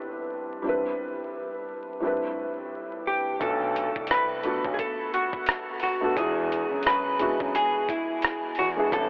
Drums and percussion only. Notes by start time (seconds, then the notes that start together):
3.41 kick, closed hi-hat
3.76 closed hi-hat
3.96 kick
4.07 closed hi-hat
4.11 cross-stick
4.43 closed hi-hat
4.64 kick
4.79 kick, closed hi-hat
5.14 closed hi-hat
5.33 kick
5.46 cross-stick, closed hi-hat
5.80 cross-stick, open hi-hat
6.17 kick, closed hi-hat
6.52 closed hi-hat
6.83 closed hi-hat
6.87 cross-stick
7.19 closed hi-hat
7.40 kick
7.55 closed hi-hat
7.89 kick, closed hi-hat
8.22 cross-stick, closed hi-hat
8.55 cross-stick, open hi-hat
8.92 kick, closed hi-hat